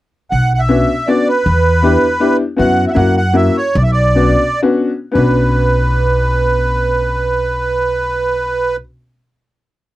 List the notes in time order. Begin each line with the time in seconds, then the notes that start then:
0.31 B1 F#5
0.54 F#5
0.59 E5
0.69 B3 C#4 D4 F#4
1.07 B3 C#4 D4 F#4 D5
1.28 B4
1.46 E2
1.82 B3 D4 E4 G4
2.20 B3 D4 E4 G4
2.56 F#2 B3 C#4 E4 F#4 F#5
2.88 E5 F#5
2.92 A#3 C#4 E4 E5
2.96 F#2 F#4 F#5
3.17 F#5
3.33 A#3 C#4 E4 F#4 E5
3.57 C#5
3.75 B1 D5
3.83 E5
3.92 D5
4.15 B3 C#4 D4 F#4
4.62 B3 C#4 D4 F#4
5.12 B1 B3 C#4 D4 B4
5.17 F#4